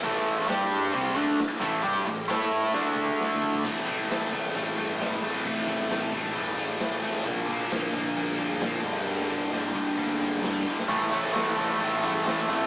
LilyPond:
<<
  \new Staff \with { instrumentName = "Overdriven electric guitar" } { \time 4/4 \key a \phrygian \tempo 4 = 133 <a, e a>4 <g d' g'>4 <c g c'>8 <d a d'>8 r8 <a, e a>8 | <g d' g'>8 <a, e>8 <a e' a'>4 <d a d'>2 | <a, e a c' e'>2.~ <a, e a c' e'>8 <a, e a c' e'>8 | <a, e a c' e'>2.~ <a, e a c' e'>8 <a, e a c' e'>8 |
<bes, d f bes d'>2.~ <bes, d f bes d'>8 <g, d g bes d'>8~ | <g, d g bes d'>2. <g, d g bes d'>8 r8 | <a, e a c' e'>2.~ <a, e a c' e'>8 <a, e a c' e'>8 | }
  \new Staff \with { instrumentName = "Overdriven electric guitar" } { \clef bass \time 4/4 \key a \phrygian <a, e a>4 <g d' g'>4 <c g c'>8 <d a d'>8 r8 <a, e a>8 | <g d' g'>8 <a, e>8 <a e' a'>4 <d a d'>2 | r1 | r1 |
r1 | r1 | <a, e a>8 <a, e a>8 <a, e a>8 <a, e a>8 <a, e a>8 <a, e a>8 <a, e a>8 <a, e a>8 | }
  \new Staff \with { instrumentName = "Distorted electric guitar" } { \clef bass \time 4/4 \key a \phrygian <a, e a>4 <g d' g'>4 <c g c'>8 <d a d'>8 r8 <a, e a>8 | <g d' g'>8 <a, e>8 <a e' a'>4 <d a d'>2 | <a, e a>8 <a, e a>8 <a, e a>8 <a, e a>8 <a, e a>8 <a, e a>8 <a, e a>8 <a, e a>8 | <a, e a>8 <a, e a>8 <a, e a>8 <a, e a>8 <a, e a>8 <a, e a>8 <a, e a>8 <a, e a>8 |
<bes, f bes>8 <bes, f bes>8 <bes, f bes>8 <bes, f bes>8 <bes, f bes>8 <bes, f bes>8 <bes, f bes>8 <g, d g>8 | <g, d g>8 <g, d g>8 <g, d g>8 <g, d g>8 <g, d g>8 <g, d g>8 <g, d g>8 <g, d g>8 | <a, e a>8 <a, e a>8 <a, e a>8 <a, e a>8 <a, e a>8 <a, e a>8 <a, e a>8 <a, e a>8 | }
  \new Staff \with { instrumentName = "Picked electric bass" } { \clef bass \time 4/4 \key a \phrygian a,,4 g,4 c,8 d,8 r8 a,,8 | g,8 a,,8 a,4 d,2 | a,,8 a,,8 a,,8 a,,8 a,,8 g,8 a,,8 a,,8 | a,,8 a,,8 a,,8 a,,8 e,,8 a,,8 a,8 a,,8 |
bes,,8 bes,,8 bes,,8 bes,,8 bes,,8 g,8 bes,,8 g,,8 | g,,8 g,,8 g,,8 g,,8 d,8 g,,8 g,8 g,,8 | a,,8 a,,8 a,,8 a,,8 a,,8 g,8 a,,8 a,,8 | }
  \new DrumStaff \with { instrumentName = "Drums" } \drummode { \time 4/4 <bd cymr>8 cymr8 <cymr sn>8 cymr8 <bd cymr>8 <bd cymr>8 <cymr sn>8 <bd cymr>8 | <bd cymr>8 cymr8 <cymr sn>8 cymr8 sn8 bd16 bd16 sn8 bd16 bd16 | <cymc bd>8 <bd cymr>8 <cymr sn>8 <bd cymr>8 cymr8 cymr8 <cymr sn>8 cymr8 | <bd cymr>16 sn16 <bd cymr>8 <cymr sn>8 <bd cymr>8 cymr16 sn16 cymr8 <cymr sn>8 cymr8 |
<bd cymr>16 sn16 <bd cymr>8 <cymr sn>8 <bd cymr>8 cymr8 cymr8 <cymr sn>8 <bd cymr>8 | cymr16 sn16 <bd cymr>8 <cymr sn>8 <bd cymr>8 cymr16 sn16 cymr8 <cymr sn>8 sn16 sn16 | <cymc bd>8 <bd cymr>8 <cymr sn>8 <bd cymr>8 cymr8 cymr8 <cymr sn>8 cymr8 | }
>>